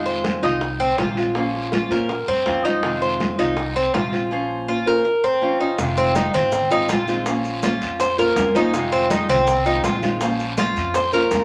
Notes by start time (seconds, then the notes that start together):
Already playing: F2 C3 D#3 G#3 C4 F4
0.06 C5, high conga
0.24 D#3 G#3 C4 F4, high bongo, high conga, short guiro
0.42 C2 D#3 G#3 C4 D#4 F4, high conga, short guiro
0.61 muted steel-string acoustic guitar stroke, high bongo, high conga, long guiro
0.80 C4, high conga
0.98 A#1 C3 D#3 G#3 C4 F4, high bongo, low bongo, high conga, short guiro
1.17 G#3 C4 F4, high conga, short guiro
1.35 F3 A#3 C#4 F4 C5, high bongo, high conga, long guiro
1.54 high bongo, high conga
1.72 A#3 C#4 F4 C5, high bongo, high conga, short guiro
1.90 A#2 A#3 C#4 F4 A#4 C5, short guiro
2.09 muted steel-string acoustic guitar stroke, high bongo, high conga, long guiro
2.28 G2 C4, high bongo, high conga
2.46 F2 F3 A#3 C#4 F4 C5, high bongo, low bongo, high conga, short guiro
2.64 C#4 D#4 F4 C5, high bongo, high conga, short guiro
2.83 C3 D#3 G#3 C4 F4, high bongo, high conga, long guiro
3.02 C5, high conga
3.20 D#3 G#3 C4 F4, high bongo, high conga, short guiro
3.38 C2 D#3 G#3 C4 D#4 F4, high conga, short guiro
3.57 muted steel-string acoustic guitar stroke, high bongo, high conga, long guiro
3.76 C4, high conga
3.94 A#1 C3 D#3 G#3 C4 F4, high bongo, low bongo, high conga, short guiro
4.12 G#3 C4 F4, high conga, short guiro
4.31 F3 A#3 C#4 F4 C5
4.68 A#3 C#4 F4 C5
4.86 A#3 C#4 F4 A#4 C5
5.04 muted steel-string acoustic guitar stroke
5.24 C4
5.41 F3 A#3 C#4 F4 C5
5.60 C#4 D#4 F4 C5
5.78 F1 C3 D#3 G#3 C4 F4, high bongo, high conga, long guiro, maracas
5.97 C4, high bongo, high conga, maracas
6.15 D#3 G#3 C4 D#4 F4, high bongo, high conga, short guiro, maracas
6.34 G#1 C4, high conga, low conga, short guiro, maracas
6.52 muted steel-string acoustic guitar stroke, high bongo, high conga, low conga, long guiro, maracas
6.71 D#3 G#3 C4 D#4 F4, high bongo, high conga, maracas
6.89 A#1 D#3 G#3 C4 F4, high bongo, low bongo, high conga, short guiro, maracas
7.07 D#3 G#3 C4 F4, high bongo, short guiro, maracas
7.26 F3 A#3 C#4 F4 C5, high bongo, high conga, long guiro, maracas
7.44 high bongo, high conga, maracas
7.63 A#3 C#4 F4 C5, high bongo, high conga, short guiro, maracas
7.81 F2, high conga, short guiro, maracas
8.00 C5, muted steel-string acoustic guitar stroke, high bongo, high conga, long guiro, maracas
8.18 A#3 C#4 F4 A#4 C5, high bongo, high conga, maracas
8.36 F2 A#3 C#4 F4 C5, high bongo, low bongo, high conga, short guiro, maracas
8.55 A#3 C#4 D#4 F4 C5, high bongo, high conga, short guiro, maracas
8.73 C3 D#3 G#3 C4 F4, high bongo, high conga, long guiro, maracas
8.92 C4, high bongo, high conga, maracas
9.10 D#3 G#3 C4 D#4 F4, high bongo, high conga, short guiro, maracas
9.29 C2 C4, high conga, low conga, short guiro, maracas
9.47 muted steel-string acoustic guitar stroke, high bongo, high conga, low conga, long guiro, maracas
9.65 D#3 G#3 C4 D#4 F4, high bongo, high conga, maracas
9.84 A#1 D#3 G#3 C4 F4, high bongo, low bongo, high conga, short guiro, maracas
10.02 D#3 G#3 C4 F4, high bongo, high conga, short guiro, maracas
10.21 F3 A#3 C#4 F4 C5, high bongo, high conga, long guiro, maracas
10.39 high bongo, high conga, maracas
10.57 A#3 C#4 F4 C5, high bongo, high conga, short guiro, maracas
10.76 F2, high conga, short guiro, maracas
10.94 C5, muted steel-string acoustic guitar stroke, high bongo, high conga, long guiro, maracas
11.12 A#3 C#4 F4 A#4 C5, high bongo, high conga, maracas
11.31 F2 A#3 C#4 F4 C5, high bongo, low bongo, high conga, short guiro, maracas